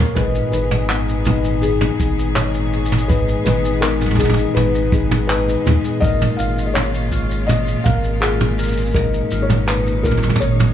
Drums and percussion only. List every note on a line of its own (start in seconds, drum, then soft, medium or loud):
0.16 kick loud
0.16 mid tom medium
0.16 shaker medium
0.35 shaker soft
0.53 shaker medium
0.71 mid tom medium
0.71 shaker soft
0.90 clap medium
0.90 shaker medium
1.09 shaker soft
1.25 kick soft
1.25 mid tom medium
1.25 shaker medium
1.44 shaker soft
1.63 shaker medium
1.81 mid tom medium
1.81 shaker soft
2.00 kick medium
2.00 shaker medium
2.19 shaker soft
2.36 clap medium
2.36 mid tom medium
2.36 shaker medium
2.54 shaker soft
2.73 shaker soft
2.85 shaker soft
2.92 mid tom medium
2.92 shaker soft
2.98 shaker medium
3.10 kick loud
3.10 shaker medium
3.29 shaker soft
3.46 mid tom medium
3.46 shaker medium
3.65 shaker soft
3.83 clap loud
3.83 shaker medium
4.01 mid tom soft
4.01 shaker soft
4.06 mid tom soft
4.11 mid tom soft
4.15 kick medium
4.15 mid tom soft
4.19 mid tom soft
4.19 shaker medium
4.25 mid tom soft
4.29 mid tom medium
4.34 mid tom medium
4.38 shaker medium
4.57 mid tom medium
4.57 shaker medium
4.75 shaker soft
4.92 kick loud
4.92 shaker medium
5.11 mid tom medium
5.11 shaker soft
5.30 clap loud
5.30 shaker medium
5.49 shaker soft
5.67 mid tom medium
5.67 shaker medium
5.84 shaker soft
6.02 kick loud
6.02 shaker medium
6.22 mid tom medium
6.22 shaker soft
6.39 shaker medium
6.58 shaker soft
6.76 clap medium
6.76 mid tom medium
6.76 shaker medium
6.95 shaker soft
7.12 kick medium
7.12 shaker medium
7.31 shaker soft
7.49 mid tom medium
7.49 shaker medium
7.68 shaker soft
7.86 kick loud
7.86 mid tom medium
7.86 shaker medium
8.04 shaker soft
8.22 clap loud
8.22 shaker medium
8.40 mid tom medium
8.40 shaker soft
8.59 shaker medium
8.63 shaker medium
8.68 shaker medium
8.72 shaker soft
8.77 shaker soft
8.81 shaker soft
8.86 shaker soft
8.91 kick loud
8.91 shaker soft
8.95 mid tom medium
8.95 shaker medium
9.14 shaker soft
9.31 shaker medium
9.50 mid tom medium
9.50 shaker soft
9.68 clap medium
9.68 shaker soft
9.87 shaker soft
10.04 kick medium
10.04 mid tom soft
10.04 shaker medium
10.11 mid tom soft
10.17 mid tom soft
10.23 mid tom medium
10.23 shaker soft
10.29 mid tom medium
10.36 mid tom medium
10.41 shaker medium
10.60 mid tom medium
10.60 shaker soft